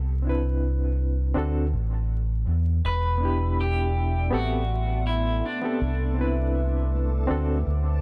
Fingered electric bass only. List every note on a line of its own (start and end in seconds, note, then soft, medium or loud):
0.00 1.33 C2 medium
1.36 1.73 D2 medium
1.73 2.44 A1 medium
2.47 2.80 E2 medium
2.85 4.29 E1 loud
4.33 5.40 A1 medium
5.81 7.26 C2 loud
7.30 7.62 D2 medium
7.67 8.01 D2 medium